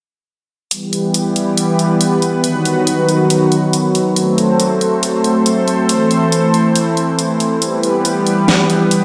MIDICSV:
0, 0, Header, 1, 3, 480
1, 0, Start_track
1, 0, Key_signature, 1, "minor"
1, 0, Tempo, 431655
1, 791, Time_signature, 4, 2, 24, 8
1, 10059, End_track
2, 0, Start_track
2, 0, Title_t, "Analog synth pad"
2, 0, Program_c, 0, 89
2, 792, Note_on_c, 0, 52, 80
2, 792, Note_on_c, 0, 55, 72
2, 792, Note_on_c, 0, 59, 72
2, 792, Note_on_c, 0, 67, 74
2, 792, Note_on_c, 0, 71, 87
2, 2692, Note_off_c, 0, 52, 0
2, 2692, Note_off_c, 0, 55, 0
2, 2692, Note_off_c, 0, 67, 0
2, 2710, Note_on_c, 0, 51, 80
2, 2711, Note_on_c, 0, 54, 76
2, 2711, Note_on_c, 0, 66, 73
2, 4593, Note_off_c, 0, 59, 0
2, 4593, Note_off_c, 0, 71, 0
2, 4611, Note_off_c, 0, 51, 0
2, 4612, Note_off_c, 0, 66, 0
2, 4630, Note_on_c, 0, 69, 75
2, 4630, Note_on_c, 0, 72, 87
2, 4631, Note_on_c, 0, 57, 73
2, 4631, Note_on_c, 0, 60, 74
2, 6512, Note_off_c, 0, 54, 0
2, 6550, Note_on_c, 0, 52, 78
2, 8432, Note_off_c, 0, 57, 0
2, 8432, Note_off_c, 0, 69, 0
2, 8432, Note_off_c, 0, 72, 0
2, 8433, Note_off_c, 0, 60, 0
2, 8470, Note_on_c, 0, 55, 72
2, 8470, Note_on_c, 0, 59, 72
2, 8471, Note_on_c, 0, 67, 75
2, 8471, Note_on_c, 0, 71, 92
2, 10059, Note_off_c, 0, 52, 0
2, 10059, Note_off_c, 0, 55, 0
2, 10059, Note_off_c, 0, 59, 0
2, 10059, Note_off_c, 0, 67, 0
2, 10059, Note_off_c, 0, 71, 0
2, 10059, End_track
3, 0, Start_track
3, 0, Title_t, "Drums"
3, 791, Note_on_c, 9, 42, 74
3, 902, Note_off_c, 9, 42, 0
3, 1032, Note_on_c, 9, 42, 50
3, 1143, Note_off_c, 9, 42, 0
3, 1271, Note_on_c, 9, 42, 73
3, 1383, Note_off_c, 9, 42, 0
3, 1512, Note_on_c, 9, 42, 50
3, 1623, Note_off_c, 9, 42, 0
3, 1751, Note_on_c, 9, 42, 76
3, 1862, Note_off_c, 9, 42, 0
3, 1991, Note_on_c, 9, 42, 48
3, 2103, Note_off_c, 9, 42, 0
3, 2231, Note_on_c, 9, 42, 76
3, 2343, Note_off_c, 9, 42, 0
3, 2471, Note_on_c, 9, 42, 49
3, 2582, Note_off_c, 9, 42, 0
3, 2711, Note_on_c, 9, 42, 70
3, 2822, Note_off_c, 9, 42, 0
3, 2951, Note_on_c, 9, 42, 49
3, 3063, Note_off_c, 9, 42, 0
3, 3191, Note_on_c, 9, 42, 73
3, 3303, Note_off_c, 9, 42, 0
3, 3431, Note_on_c, 9, 42, 48
3, 3542, Note_off_c, 9, 42, 0
3, 3672, Note_on_c, 9, 42, 72
3, 3783, Note_off_c, 9, 42, 0
3, 3911, Note_on_c, 9, 42, 48
3, 4023, Note_off_c, 9, 42, 0
3, 4151, Note_on_c, 9, 42, 71
3, 4262, Note_off_c, 9, 42, 0
3, 4392, Note_on_c, 9, 42, 50
3, 4503, Note_off_c, 9, 42, 0
3, 4630, Note_on_c, 9, 42, 69
3, 4742, Note_off_c, 9, 42, 0
3, 4871, Note_on_c, 9, 42, 48
3, 4982, Note_off_c, 9, 42, 0
3, 5111, Note_on_c, 9, 42, 68
3, 5222, Note_off_c, 9, 42, 0
3, 5351, Note_on_c, 9, 42, 48
3, 5462, Note_off_c, 9, 42, 0
3, 5591, Note_on_c, 9, 42, 67
3, 5703, Note_off_c, 9, 42, 0
3, 5831, Note_on_c, 9, 42, 46
3, 5942, Note_off_c, 9, 42, 0
3, 6071, Note_on_c, 9, 42, 70
3, 6182, Note_off_c, 9, 42, 0
3, 6312, Note_on_c, 9, 42, 47
3, 6423, Note_off_c, 9, 42, 0
3, 6551, Note_on_c, 9, 42, 70
3, 6663, Note_off_c, 9, 42, 0
3, 6791, Note_on_c, 9, 42, 46
3, 6903, Note_off_c, 9, 42, 0
3, 7031, Note_on_c, 9, 42, 69
3, 7142, Note_off_c, 9, 42, 0
3, 7271, Note_on_c, 9, 42, 45
3, 7383, Note_off_c, 9, 42, 0
3, 7511, Note_on_c, 9, 42, 66
3, 7623, Note_off_c, 9, 42, 0
3, 7752, Note_on_c, 9, 42, 44
3, 7863, Note_off_c, 9, 42, 0
3, 7991, Note_on_c, 9, 42, 67
3, 8103, Note_off_c, 9, 42, 0
3, 8231, Note_on_c, 9, 42, 44
3, 8342, Note_off_c, 9, 42, 0
3, 8471, Note_on_c, 9, 42, 67
3, 8582, Note_off_c, 9, 42, 0
3, 8711, Note_on_c, 9, 42, 45
3, 8823, Note_off_c, 9, 42, 0
3, 8951, Note_on_c, 9, 42, 68
3, 9062, Note_off_c, 9, 42, 0
3, 9191, Note_on_c, 9, 42, 47
3, 9302, Note_off_c, 9, 42, 0
3, 9431, Note_on_c, 9, 38, 109
3, 9431, Note_on_c, 9, 42, 70
3, 9543, Note_off_c, 9, 38, 0
3, 9543, Note_off_c, 9, 42, 0
3, 9671, Note_on_c, 9, 42, 45
3, 9782, Note_off_c, 9, 42, 0
3, 9910, Note_on_c, 9, 42, 69
3, 10021, Note_off_c, 9, 42, 0
3, 10059, End_track
0, 0, End_of_file